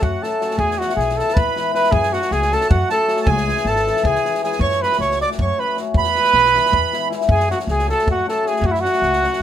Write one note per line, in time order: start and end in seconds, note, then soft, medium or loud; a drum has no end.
0.00 0.14 F#2 medium
0.00 0.20 F#3 medium
0.00 0.24 F#4 medium
0.00 0.22 F#5 medium
0.00 kick medium
0.21 0.39 F#3 medium
0.21 0.34 A3 medium
0.21 0.35 C#4 medium
0.21 0.35 F#4 medium
0.21 0.58 A4 medium
0.21 0.58 A5 medium
0.21 snare soft
0.40 0.63 F#3 medium
0.40 0.52 A3 medium
0.40 0.53 C#4 medium
0.40 0.53 F#4 medium
0.40 snare soft
0.51 snare soft
0.58 0.81 E2 medium
0.58 0.80 G#4 medium
0.58 0.78 G#5 medium
0.58 kick medium
0.71 snare soft
0.78 1.15 E3 medium
0.78 1.16 G#3 medium
0.78 0.92 B3 medium
0.78 0.92 E4 medium
0.78 0.95 F#4 medium
0.78 0.98 F#5 medium
0.78 snare soft
0.90 snare soft
0.96 1.20 B1 medium
0.96 1.18 G#4 medium
0.96 1.17 G#5 medium
0.96 snare soft
1.10 snare soft
1.16 1.52 E3 medium
1.16 1.53 G#3 medium
1.16 1.30 B3 medium
1.16 1.31 E4 medium
1.16 1.35 A4 medium
1.16 1.37 A5 medium
1.16 snare soft
1.29 snare soft
1.34 1.48 E2 medium
1.34 1.73 B4 medium
1.34 1.74 B5 medium
1.34 kick loud
1.53 1.71 E3 medium
1.53 1.71 G#3 medium
1.53 1.68 B3 medium
1.53 1.68 E4 medium
1.53 snare soft
1.73 1.98 E3 medium
1.73 1.98 G#3 medium
1.73 1.86 B3 medium
1.73 1.87 E4 medium
1.73 1.93 B4 medium
1.73 1.92 B5 medium
1.73 snare soft
1.84 snare soft
1.92 2.15 F#2 loud
1.92 2.14 G#4 medium
1.92 2.13 G#5 medium
1.92 kick medium
2.03 snare soft
2.11 2.48 F#3 medium
2.11 2.25 A3 medium
2.11 2.25 C#4 medium
2.11 2.34 F#4 medium
2.11 2.26 F#4 medium
2.11 2.31 F#5 medium
2.11 snare soft
2.22 snare soft
2.31 2.55 C#2 medium
2.31 2.55 G#4 medium
2.31 2.52 G#5 medium
2.31 snare soft
2.42 snare soft
2.50 2.88 F#3 medium
2.50 2.64 A3 soft
2.50 2.65 C#4 medium
2.50 2.65 F#4 medium
2.50 2.70 A4 medium
2.50 2.71 A5 medium
2.50 snare soft
2.61 snare soft
2.70 2.82 F#2 medium
2.70 2.89 F#4 medium
2.70 2.89 F#5 medium
2.70 kick loud
2.90 3.06 F#3 medium
2.90 3.03 A3 medium
2.90 3.03 C#4 medium
2.90 3.04 F#4 medium
2.90 3.22 A4 medium
2.90 3.17 A5 medium
2.90 snare soft
3.07 3.32 F#3 medium
3.07 3.20 A3 medium
3.07 3.20 C#4 medium
3.07 3.21 F#4 medium
3.07 snare soft
3.17 snare soft
3.21 3.31 A4 medium
3.21 3.27 A5 medium
3.26 3.50 C#2 loud
3.26 3.70 G#4 medium
3.26 3.65 G#5 medium
3.26 kick loud
3.37 snare soft
3.46 3.85 E3 medium
3.46 3.84 G#3 medium
3.46 3.60 C#4 medium
3.46 3.60 E4 medium
3.46 snare soft
3.57 snare soft
3.65 3.89 G#1 medium
3.65 4.05 A5 medium
3.65 snare soft
3.69 4.05 A4 medium
3.76 snare soft
3.86 4.23 E3 medium
3.86 4.23 G#3 soft
3.86 3.99 C#4 soft
3.86 4.00 E4 medium
3.86 snare soft
3.97 snare soft
4.04 4.16 C#2 medium
4.04 4.40 G#4 medium
4.04 4.40 G#5 medium
4.04 kick medium
4.15 snare soft
4.24 4.42 E3 medium
4.24 4.43 G#3 medium
4.24 4.37 C#4 medium
4.24 4.37 E4 medium
4.24 snare soft
4.35 snare soft
4.43 4.66 E3 medium
4.43 4.66 G#3 medium
4.43 4.56 C#4 medium
4.43 4.56 E4 medium
4.43 4.60 G#4 medium
4.43 4.60 G#5 medium
4.43 snare soft
4.52 snare soft
4.59 4.83 F#2 loud
4.59 4.83 C#5 medium
4.59 4.80 C#6 medium
4.59 kick medium
4.71 snare soft
4.81 5.17 F#3 medium
4.81 4.94 A3 medium
4.81 4.94 C#4 medium
4.81 4.94 F#4 medium
4.81 4.99 B4 medium
4.81 5.01 B5 medium
4.81 snare soft
4.92 snare soft
4.99 5.23 C#2 medium
4.99 5.19 C#5 medium
4.99 5.20 C#6 medium
4.99 snare soft
5.11 snare soft
5.18 5.56 F#3 medium
5.18 5.32 A3 soft
5.18 5.33 C#4 soft
5.18 5.33 F#4 medium
5.18 5.30 D5 medium
5.18 5.30 D6 medium
5.18 snare soft
5.31 snare soft
5.38 5.50 F#2 medium
5.38 5.59 C#6 medium
5.38 kick medium
5.42 5.61 C#5 medium
5.58 5.76 F#3 medium
5.58 5.71 A3 medium
5.58 5.71 C#4 medium
5.58 5.71 F#4 medium
5.58 5.77 B4 medium
5.58 5.77 B5 medium
5.77 6.00 F#3 medium
5.77 5.90 A3 medium
5.77 5.90 C#4 medium
5.77 5.91 F#4 medium
5.77 snare soft
5.94 6.18 E2 medium
5.94 7.08 B4 loud
5.94 7.08 B5 loud
5.94 kick medium
6.04 snare soft
6.15 6.52 E3 medium
6.15 6.52 G#3 medium
6.15 6.29 B3 medium
6.15 6.29 E4 medium
6.15 snare soft
6.25 snare soft
6.33 6.57 B1 medium
6.33 snare soft
6.45 snare soft
6.53 6.90 E3 medium
6.53 6.91 G#3 medium
6.53 6.67 B3 medium
6.53 6.67 E4 medium
6.53 snare soft
6.66 snare soft
6.72 6.84 E2 medium
6.72 kick medium
6.92 7.07 E3 medium
6.92 7.08 G#3 medium
6.92 7.05 B3 medium
6.92 7.06 E4 medium
6.92 snare soft
7.08 7.34 E3 medium
7.08 7.34 G#3 medium
7.08 7.23 B3 medium
7.08 7.23 E4 medium
7.08 snare soft
7.21 snare soft
7.28 7.52 F#2 medium
7.28 7.49 G#4 medium
7.28 7.50 G#5 medium
7.28 kick medium
7.40 snare soft
7.48 7.85 F#3 medium
7.48 7.62 A3 medium
7.48 7.62 C#4 medium
7.48 7.63 F#4 medium
7.48 7.59 F#4 medium
7.48 7.59 F#5 medium
7.48 snare soft
7.60 snare soft
7.67 7.91 C#2 medium
7.67 7.89 G#4 medium
7.67 7.89 G#5 medium
7.67 snare soft
7.79 snare soft
7.87 8.25 F#3 medium
7.87 8.01 A3 medium
7.87 8.01 C#4 medium
7.87 8.01 F#4 medium
7.87 8.06 A4 medium
7.87 snare soft
7.93 8.08 A5 medium
7.99 snare soft
8.06 8.18 F#2 medium
8.06 kick medium
8.11 8.27 F#4 medium
8.11 8.27 F#5 medium
8.26 8.41 F#3 medium
8.26 8.39 A3 medium
8.26 8.39 C#4 soft
8.26 8.40 F#4 medium
8.26 8.49 A4 medium
8.26 8.45 A5 medium
8.26 snare soft
8.43 8.68 F#3 medium
8.43 8.57 A3 medium
8.43 8.57 C#4 medium
8.43 8.57 F#4 medium
8.43 snare soft
8.48 8.67 G#4 medium
8.48 8.64 G#5 medium
8.56 snare soft
8.61 8.85 F#2 medium
8.61 kick medium
8.66 8.73 F#4 medium
8.66 8.72 F#5 medium
8.71 8.82 E4 medium
8.71 8.79 E5 medium
8.71 snare soft
8.80 9.21 F#3 medium
8.80 8.96 A3 medium
8.80 8.96 C#4 medium
8.80 9.42 F#4 medium
8.80 9.42 F#5 medium
8.85 8.97 F#4 medium
8.85 snare soft
8.93 snare soft
9.02 9.25 C#2 medium
9.02 snare soft
9.13 snare soft
9.22 9.42 F#3 medium
9.22 9.35 A3 medium
9.22 9.35 C#4 medium
9.22 snare soft
9.33 snare soft